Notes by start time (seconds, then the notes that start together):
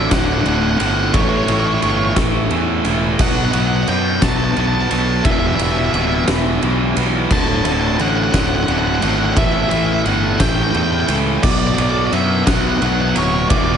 Already playing: A2 D3 A3 D4 F#4 A4 E5
0.11 D1 D2 A2 D3 F#5, kick, snare, ride
0.19 F#5
0.25 F#5
0.33 F#5
0.41 F#5
0.46 D1 D2 A2 D3 F#5, ride
0.55 F#5
0.63 F#5
0.70 F#5
0.79 G1 D2 A2 D3 F#5, ride
1.14 A1 A2 E3 A3 E4 G4 C#5, kick, ride
1.22 C#5
1.29 C#5
1.37 C#5
1.44 A1 C#5
1.48 A2 E3 A3, ride
1.52 C#5
1.60 C#5
1.67 C#5
1.74 C#5
1.82 G1 A2 E3 A3 C#5, ride
1.90 C#5
1.97 C#5
2.05 C#5
2.16 A1 A2 E3 A3, kick, snare, ride
2.50 E2 A2 E3 A3, ride
2.85 E1 A2 E3 A3, ride
3.19 B1 B2 F#3 B3 D4 F#5, kick, crash
3.28 F#5
3.36 F#5
3.45 F#5
3.52 B1 B2 F#3 B3 F#5, ride
3.60 F#5
3.67 F#5
3.76 F#5
3.83 F#5
3.87 F#2 B2 F#3 B3 G5, ride
4.22 B1 B2 F#3 B3 A5, kick, snare, ride
4.29 A5
4.37 A5
4.44 A5
4.52 A5
4.56 B1 B2 F#3 B3 A5, ride
4.67 A5
4.75 A5
4.81 A5
4.90 B1 B2 F#3 B3 A5, ride
5.25 E1 E2 B2 E3 E4 G4 D5 E5, kick, ride
5.31 E5
5.39 E5
5.47 E5
5.56 E1 E2 E5, ride
5.60 B2 E3 E5
5.70 E5
5.78 E5
5.86 E5
5.93 D1 E2 B2 E3 E5, ride
6.01 E5
6.07 E5
6.15 E5
6.28 E1 E2 B2 E3, snare, ride
6.62 B1 E2 B2 E3, ride
6.96 B1 E2 B2 E3, ride
7.30 D1 D2 A2 D3 A3 C#4 D4 F#4 C#5 A5, kick, crash
7.41 A5
7.48 A5
7.56 A5
7.65 D1 D2 A2 D3 A5, ride
7.72 A5
7.81 A5
7.88 A5
7.99 A1 D2 A2 D3 F#5, ride
8.09 F#5
8.17 F#5
8.23 F#5
8.32 D1 D2 A2 D3 F#5, kick, snare, ride
8.40 F#5
8.47 F#5
8.56 F#5
8.64 D2 F#5
8.68 D1 A2 D3 F#5, ride
8.79 F#5
8.87 F#5
8.95 F#5
9.02 G#1 D2 A2 D3 F#5, ride
9.09 F#5
9.18 F#5
9.25 F#5
9.34 A1 A2 E3 A3 E4 E5 F#5, kick, ride
9.38 G4
9.45 E5
9.53 E5
9.62 E5
9.70 A1 A2 E3 A3 E5, ride
9.77 E5
9.86 E5
9.93 E5
10.05 G1 A2 E3 A3 F#5, ride
10.40 A1 A2 E3 A3 G5, kick, snare, ride
10.49 G5
10.55 G5
10.63 G5
10.70 E2 A2 G5, ride
10.75 E3 A3 G5
10.83 G5
10.92 G5
11.00 G5
11.07 C#2 A2 E3 A3 G5, ride
11.43 B1 B2 F#3 B3 D4 F#4 D5, kick, crash
11.51 D5
11.59 D5
11.67 D5
11.75 B1 B2 F#3 B3 D5, ride
11.82 D5
11.90 D5
11.99 D5
12.07 D5
12.12 F#2 B2 F#3 B3 E5, ride
12.46 B1 B2 F#3 B3 F#5, kick, snare, ride
12.55 F#5
12.62 F#5
12.69 F#5
12.78 B1 B2 F#5, ride
12.82 F#3 B3 F#5
12.93 F#5
13.02 F#5
13.09 F#5
13.15 D1 B2 F#3 B3 C#5, ride
13.49 E1 E2 B2 E3 B3 E4 G4 D5, kick, ride
13.58 D5
13.64 D5
13.74 D5